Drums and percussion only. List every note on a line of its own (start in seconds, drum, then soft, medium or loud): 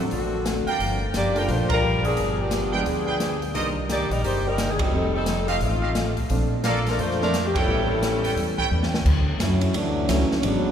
0.11 open hi-hat soft
0.46 snare medium
0.46 closed hi-hat soft
0.67 open hi-hat soft
0.80 open hi-hat soft
1.14 snare medium
1.14 closed hi-hat soft
1.36 open hi-hat soft
1.48 open hi-hat soft
1.70 kick medium
1.70 ride medium
2.05 open hi-hat soft
2.17 open hi-hat soft
2.51 snare medium
2.51 closed hi-hat medium
2.86 open hi-hat soft
3.20 snare medium
3.20 closed hi-hat soft
3.42 open hi-hat soft
3.55 open hi-hat soft
3.89 snare medium
3.89 closed hi-hat soft
4.11 open hi-hat soft
4.24 open hi-hat soft
4.58 snare medium
4.58 closed hi-hat medium
4.79 kick medium
4.79 ride medium
5.26 snare medium
5.26 closed hi-hat soft
5.48 open hi-hat soft
5.61 open hi-hat soft
5.95 snare medium
5.95 closed hi-hat soft
6.17 kick soft
6.17 open hi-hat soft
6.30 open hi-hat soft
6.64 snare medium
6.64 closed hi-hat soft
6.76 snare soft
6.87 snare soft
6.87 open hi-hat soft
6.99 open hi-hat soft
7.11 snare soft
7.22 snare soft
7.34 snare medium
7.34 closed hi-hat soft
7.55 kick medium
7.55 ride medium
8.03 snare medium
8.03 closed hi-hat soft
8.24 open hi-hat soft
8.37 open hi-hat soft
8.59 kick soft
8.83 snare medium
8.94 snare medium
9.05 kick medium
9.05 crash medium
9.40 snare medium
9.40 hi-hat pedal medium
9.40 ride medium
9.61 ride medium
9.74 ride medium
10.09 snare medium
10.09 hi-hat pedal medium
10.09 ride medium
10.20 snare soft
10.32 snare soft
10.43 ride medium